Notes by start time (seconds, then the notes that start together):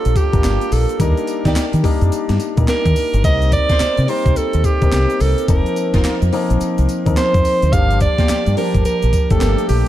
Already playing: G3 A#3 D4 F4 A4 A#4
0.05 A#1, closed hi-hat, shaker
0.16 G4, kick, closed hi-hat, tambourine, shaker
0.32 G1 G3 A#3 D4 F4 A#4, kick, closed hi-hat, shaker
0.44 G1, snare, clap, closed hi-hat, tambourine, shaker
0.61 closed hi-hat, shaker
0.72 A#1 A4, open hi-hat, tambourine, shaker
0.89 closed hi-hat, shaker
0.99 D#2 G3 A#3 D4 D#4 A#4, kick, closed hi-hat, tambourine, shaker
1.17 closed hi-hat, shaker
1.27 closed hi-hat, tambourine, shaker
1.45 D#2 D#4 G4 D5, kick, snare, closed hi-hat, shaker
1.56 muted fingered electric bass stroke, snare, clap, closed hi-hat, tambourine, shaker
1.73 D#3, closed hi-hat, shaker
1.83 G3 A#3 D4 D#4 A#4, kick, open hi-hat, shaker
2.01 F2, closed hi-hat, shaker
2.12 muted fingered electric bass stroke, closed hi-hat, tambourine, shaker
2.29 G2, snare, closed hi-hat, shaker
2.40 closed hi-hat, tambourine, shaker
2.57 A#2 G3 A#3 D4 D#4 A#4, kick, closed hi-hat, shaker
2.68 A#4, snare, clap, closed hi-hat, tambourine, shaker
2.86 D#3, kick, closed hi-hat, shaker
2.96 open hi-hat, tambourine, shaker
3.14 G1, closed hi-hat, shaker
3.24 C2 G3 A#3 C4 D#4 A#4 D#5, kick, closed hi-hat, tambourine, shaker
3.42 closed hi-hat, shaker
3.52 D5, kick, closed hi-hat, tambourine, shaker
3.69 D#4 A#4 C5, kick, snare, closed hi-hat, shaker
3.80 muted fingered electric bass stroke, snare, clap, closed hi-hat, tambourine, shaker
3.97 C3, closed hi-hat, shaker
4.08 G3 A#3 C4 D#4 A#4 C5, open hi-hat, shaker
4.26 C2, kick, closed hi-hat, shaker
4.36 A4, muted fingered electric bass stroke, closed hi-hat, tambourine, shaker
4.53 D#2, closed hi-hat, shaker
4.64 G4, kick, closed hi-hat, tambourine, shaker
4.81 C2 G3 A#3 C4 D#4 A#4, kick, closed hi-hat, shaker
4.92 C2, snare, clap, closed hi-hat, tambourine, shaker
5.10 closed hi-hat, shaker
5.20 C2 A4, open hi-hat, tambourine, shaker
5.38 closed hi-hat, shaker
5.48 F1 F3 A#3 C4 D#4 A#4, kick, closed hi-hat, tambourine, shaker
5.66 closed hi-hat, shaker
5.76 closed hi-hat, tambourine, shaker
5.94 F1 D#4 F4 A#4, kick, snare, closed hi-hat, shaker
6.04 muted fingered electric bass stroke, snare, clap, closed hi-hat, tambourine, shaker
6.22 F2, closed hi-hat, shaker
6.33 F3 A#3 C4 D#4 A#4, open hi-hat, shaker
6.50 A#1, closed hi-hat, shaker
6.61 closed hi-hat, tambourine, shaker
6.78 C2, closed hi-hat, shaker
6.89 closed hi-hat, tambourine, shaker
7.06 D#2 F3 A#3 C4 D#4 A#4, kick, closed hi-hat, shaker
7.17 C5, snare, clap, closed hi-hat, tambourine, shaker
7.34 F2, kick, closed hi-hat, shaker
7.45 open hi-hat, tambourine, shaker
7.62 D2, closed hi-hat, shaker
7.73 G1 F3 G3 A#3 D4 G4 F5, kick, closed hi-hat, tambourine, shaker
7.91 closed hi-hat, shaker
8.00 D5, kick, closed hi-hat, tambourine, shaker
8.18 A#3 F4 G4, kick, snare, closed hi-hat, shaker
8.29 muted fingered electric bass stroke, snare, clap, closed hi-hat, tambourine, shaker
8.46 G2, closed hi-hat, shaker
8.57 F3 G3 A#3 D4 G4 A#4, open hi-hat, shaker
8.74 G1, kick, closed hi-hat, shaker
8.85 A#4, muted fingered electric bass stroke, closed hi-hat, tambourine, shaker
9.02 A#1, closed hi-hat, shaker
9.13 kick, closed hi-hat, tambourine, shaker
9.30 G1 F3 G3 A3 D4 G4 A4, kick, closed hi-hat, shaker
9.38 A#3, snare, clap, closed hi-hat, tambourine, shaker
9.42 G1
9.58 closed hi-hat, shaker
9.69 A#1 G4, open hi-hat, tambourine, shaker